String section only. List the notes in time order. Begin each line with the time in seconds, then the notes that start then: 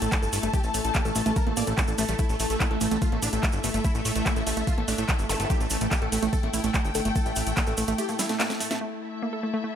Already playing: E4 A4 A5
2.53 E5
5.85 G5
8.81 E4
9.05 A4 E5